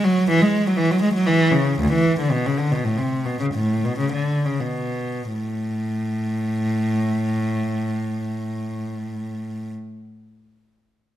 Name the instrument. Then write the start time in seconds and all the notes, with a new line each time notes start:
cello
0.04 F#3
0.30 E3
0.41 G#3
0.67 F#3
0.77 E3
0.91 F#3
1.02 G#3
1.13 F#3
1.27 E3
1.51 C#3
1.80 D2
1.94 E3
2.19 D3
2.32 B2
2.46 C#3
2.57 D3
2.72 B2
2.84 A2
2.98 C3
3.26 B2
3.40 C#3
3.55 A2
3.85 B2
3.99 C#3
4.13 D3
4.45 C#3
4.61 B2
5.33 A2